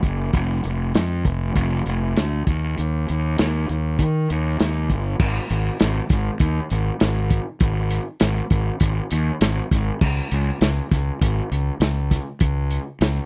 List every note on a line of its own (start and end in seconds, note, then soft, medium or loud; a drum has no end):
0.03 0.31 F#1 medium
0.03 kick medium
0.03 closed hi-hat medium
0.33 0.62 F1 medium
0.33 kick loud
0.33 closed hi-hat medium
0.64 0.92 F1 medium
0.64 closed hi-hat medium
0.94 1.23 F2 medium
0.94 snare loud
0.94 closed hi-hat medium
0.94 tambourine loud
1.25 1.53 F1 medium
1.25 kick medium
1.25 closed hi-hat medium
1.55 1.84 F1 loud
1.55 kick medium
1.55 closed hi-hat medium
1.86 2.14 F1 medium
1.86 closed hi-hat medium
2.16 2.45 D2 loud
2.16 snare loud
2.16 closed hi-hat medium
2.16 tambourine loud
2.47 2.75 D#2 medium
2.47 kick medium
2.47 closed hi-hat medium
2.77 3.06 D#2 medium
2.77 closed hi-hat medium
3.08 3.37 D#2 medium
3.08 closed hi-hat medium
3.38 3.67 D#2 medium
3.38 snare loud
3.38 closed hi-hat medium
3.38 tambourine loud
3.69 3.97 D#2 medium
3.69 closed hi-hat medium
3.99 4.27 D#3 medium
3.99 kick medium
3.99 closed hi-hat medium
4.30 4.58 D#2 medium
4.30 closed hi-hat medium
4.59 4.88 D#2 medium
4.59 snare loud
4.59 closed hi-hat medium
4.59 tambourine loud
4.90 5.18 G1 medium
4.90 kick medium
4.90 closed hi-hat medium
5.19 5.38 G#1 medium
5.19 kick loud
5.19 crash loud
5.50 5.69 G#1 medium
5.50 closed hi-hat medium
5.80 5.99 G#1 medium
5.80 snare loud
5.80 closed hi-hat medium
5.80 tambourine loud
6.10 6.29 G#1 medium
6.10 kick medium
6.10 snare soft
6.10 closed hi-hat medium
6.39 6.59 D#2 medium
6.39 kick medium
6.39 closed hi-hat medium
6.70 6.90 G#1 medium
6.70 closed hi-hat medium
7.00 7.38 G#1 loud
7.00 snare loud
7.00 closed hi-hat loud
7.00 tambourine loud
7.30 kick medium
7.30 closed hi-hat medium
7.60 7.98 G#1 medium
7.60 kick loud
7.60 closed hi-hat loud
7.90 closed hi-hat medium
8.20 8.40 G#1 medium
8.20 snare loud
8.20 closed hi-hat medium
8.20 tambourine loud
8.50 8.69 G#1 medium
8.50 kick medium
8.50 closed hi-hat medium
8.80 8.99 G#1 loud
8.80 kick medium
8.80 closed hi-hat loud
9.11 9.30 D#2 medium
9.11 closed hi-hat medium
9.41 9.60 G#1 medium
9.41 snare loud
9.41 closed hi-hat loud
9.41 tambourine loud
9.71 9.90 G#1 medium
9.71 kick medium
9.71 snare soft
9.71 closed hi-hat medium
10.01 10.20 C#2 medium
10.01 kick loud
10.01 crash loud
10.31 10.50 C#2 medium
10.31 closed hi-hat medium
10.61 10.80 C#2 loud
10.61 snare loud
10.61 closed hi-hat medium
10.61 tambourine loud
10.91 11.10 C#2 medium
10.91 kick medium
10.91 snare soft
10.91 closed hi-hat medium
11.21 11.40 G#1 loud
11.21 kick medium
11.21 closed hi-hat medium
11.51 11.70 C#2 medium
11.51 closed hi-hat medium
11.80 12.17 C#2 loud
11.80 snare loud
11.80 closed hi-hat medium
11.80 tambourine loud
12.11 kick medium
12.11 snare soft
12.11 closed hi-hat medium
12.40 12.77 C#2 medium
12.40 kick loud
12.40 closed hi-hat loud
12.71 closed hi-hat medium
13.01 13.19 C#2 loud
13.01 snare loud
13.01 closed hi-hat medium
13.01 tambourine loud